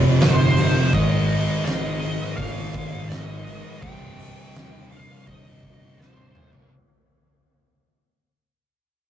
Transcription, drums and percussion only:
0.20 snare, open hi-hat
0.56 open hi-hat
0.93 kick, open hi-hat
1.29 open hi-hat
1.66 snare, open hi-hat
2.02 open hi-hat
2.38 kick, open hi-hat
2.74 kick, open hi-hat
3.10 snare, open hi-hat
3.47 open hi-hat
3.82 kick, open hi-hat
4.19 open hi-hat
4.55 snare, open hi-hat
4.92 open hi-hat
5.27 kick, open hi-hat
5.63 kick, open hi-hat
6.01 snare
6.17 high tom
6.35 mid tom
6.53 floor tom

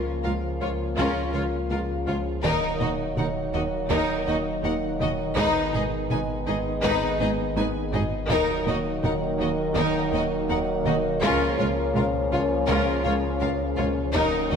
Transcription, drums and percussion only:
0.98 taiko
2.44 taiko
2.81 taiko low-mid
3.17 taiko low-mid
3.91 taiko
5.00 taiko low-mid
5.37 taiko
5.74 taiko low-mid
6.11 taiko low-mid
6.84 taiko
7.21 taiko high
7.57 taiko high
7.94 taiko low
8.31 taiko
8.67 taiko low-mid
9.04 taiko low-mid
9.76 taiko
10.86 taiko low-mid
11.23 taiko
11.60 taiko low-mid
11.96 taiko low-mid
12.69 taiko
13.79 taiko low-mid
14.15 taiko
14.52 taiko low-mid

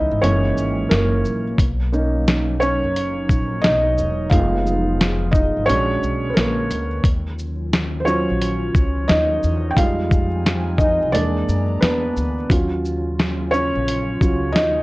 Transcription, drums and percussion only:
0.24 closed hi-hat
0.57 shaker
0.91 snare, closed hi-hat
1.25 shaker
1.58 kick, closed hi-hat
1.93 shaker
2.28 snare, closed hi-hat
2.62 shaker
2.96 closed hi-hat
3.29 kick, shaker
3.64 snare, closed hi-hat
3.98 shaker
4.31 kick, closed hi-hat
4.66 shaker
5.01 snare, closed hi-hat
5.33 kick, shaker
5.70 closed hi-hat
6.03 shaker
6.37 snare, closed hi-hat
6.71 closed hi-hat, shaker
7.04 kick, closed hi-hat
7.39 shaker
7.73 snare, closed hi-hat
8.07 shaker
8.42 closed hi-hat
8.75 kick, shaker
9.09 snare, closed hi-hat
9.43 shaker
9.77 kick, closed hi-hat
10.11 kick, shaker
10.46 snare, closed hi-hat
10.78 kick, shaker
11.15 closed hi-hat
11.49 shaker
11.83 snare, closed hi-hat
12.17 shaker
12.50 kick, closed hi-hat
12.85 shaker
13.20 snare, closed hi-hat
13.53 shaker
13.88 closed hi-hat
14.21 kick, shaker
14.56 snare, closed hi-hat

